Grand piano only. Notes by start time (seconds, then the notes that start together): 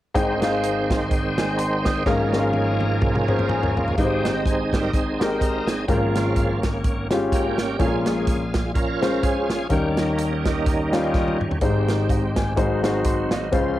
0.14 G#1 G#2 D#4 G#4 C5 G5
0.41 D#4 G#4 C5 F5
1.38 G#5
1.58 C6
1.85 D#6
2.06 G#1 G#2 C#4 G#4 A#4 F5
2.33 C#4 G#4 A#4 D#5
2.40 F5
3.28 C#4 G#4 A#4 C5
3.49 G#5
3.76 F5
3.97 G#1 G#2 G#3 D#4 G4 B4
4.04 C5
5.20 G#3 D#4 G4 A#4
5.88 G#1 G#2 G#3 C#4 F4 A#4
7.11 G#3 C#4 F4 G4
7.79 A#1 A#2 G#3 C#4 F4 A4
7.85 A#4
9.02 G#3 C#4 F4 C5
9.69 D#2 D#3 G3 C#4 D#4 A#4
10.92 G3 C#4 D#4 F4
11.61 G#1 G#2 G#3 D#4 G4 C5
12.10 D#5
12.36 G#5
12.56 G#1 G#2 G#3 D#4 F#4 C5
12.83 G#3 D#4 F#4 C5
13.06 C6
13.32 D#5
13.52 C#2 C#3 G#3 C#4 F4 C5